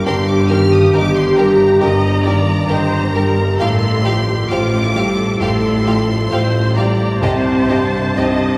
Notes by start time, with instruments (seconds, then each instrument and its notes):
0.06 double bass section G1, cello section G2, felt piano G2, violin section G4 A#4 C6, viola section G4
0.28 violin section D6
0.49 felt piano D#3, violin section G4 A#4 F6
0.73 violin section D#6
0.93 double bass section G1, cello section G2, violin section G4 A#4 D6, felt piano G4 D#5
1.17 violin section C6
1.37 felt piano G3, violin section G4 A#4 A#5
1.80 double bass section G1, cello section G2, felt piano G2, violin section G4 A#4 A#5, viola section D#5
2.25 felt piano D#3, violin section G4 A#4, viola section D5
2.69 double bass section G1, cello section G2, violin section G4 A#4, felt piano G4 D#5, viola section C5
3.14 felt piano G3, violin section G4 A#4, viola section A#4
3.60 double bass section A1, felt piano A2, cello section A2, violin section G4 F5 C6, viola section A4
4.05 felt piano F3, violin section G4 F5, viola section G4
4.49 double bass section A1, cello section A2, viola section F4, felt piano F4 C5, violin section G4 F5 D6
4.95 felt piano G3, violin section G4 F5, viola section A4
5.41 double bass section A1, felt piano A2, cello section A2, violin section G4 F5 C6
5.86 felt piano F3, violin section G4 F5
6.31 double bass section A1, cello section A2, felt piano F4 C5, violin section G4 F5, viola section C5
6.76 felt piano G3, violin section G4 F5 A#5, viola section D5
7.22 felt piano C2, double bass section C2, cello section C3, violin section G4 D#5 A5, viola section C5
7.69 felt piano G2, violin section G4 D#5
8.17 double bass section C2, cello section C3, felt piano D#4 C5, violin section G4 D#5, viola section D#5